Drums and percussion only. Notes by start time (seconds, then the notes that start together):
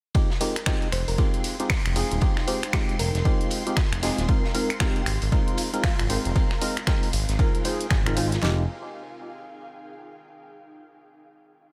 0.15 kick, ride
0.30 snare
0.41 open hi-hat, ride
0.56 finger snap, closed hi-hat
0.66 finger snap, kick, snare, ride
0.82 closed hi-hat
0.92 finger snap, open hi-hat, ride
1.08 open hi-hat, ride
1.18 kick, ride
1.34 closed hi-hat
1.44 open hi-hat, ride
1.60 closed hi-hat
1.70 finger snap, kick, snare, open hi-hat, ride
1.86 finger snap, closed hi-hat
1.96 open hi-hat, ride
2.11 closed hi-hat
2.21 kick, ride
2.37 finger snap, snare
2.48 open hi-hat, ride
2.63 finger snap, closed hi-hat, ride
2.73 finger snap, kick, snare, ride
2.89 closed hi-hat
2.99 open hi-hat, ride
3.15 snare, closed hi-hat
3.25 kick, ride
3.41 closed hi-hat
3.50 open hi-hat, ride
3.67 closed hi-hat
3.77 finger snap, kick, snare, ride
3.93 finger snap, closed hi-hat, ride
4.03 snare, open hi-hat, ride
4.18 snare, closed hi-hat
4.28 kick, ride
4.44 snare
4.55 open hi-hat, ride
4.70 finger snap, closed hi-hat
4.80 finger snap, kick, snare, ride
4.96 closed hi-hat
5.06 finger snap, open hi-hat, ride
5.22 open hi-hat, ride
5.32 kick, ride
5.48 closed hi-hat
5.57 open hi-hat, ride
5.74 closed hi-hat
5.84 finger snap, kick, snare, open hi-hat, ride
5.99 finger snap, closed hi-hat
6.10 open hi-hat, ride
6.25 closed hi-hat
6.36 kick, ride
6.51 finger snap, snare
6.62 open hi-hat, ride
6.77 finger snap, closed hi-hat, ride
6.87 finger snap, kick, snare, ride
7.03 open hi-hat
7.13 open hi-hat, ride
7.29 snare, closed hi-hat
7.39 kick, ride
7.55 closed hi-hat
7.64 open hi-hat, ride
7.81 closed hi-hat
7.91 finger snap, kick, snare, ride
8.06 finger snap, closed hi-hat, ride
8.17 open hi-hat, ride
8.32 snare, closed hi-hat
8.43 snare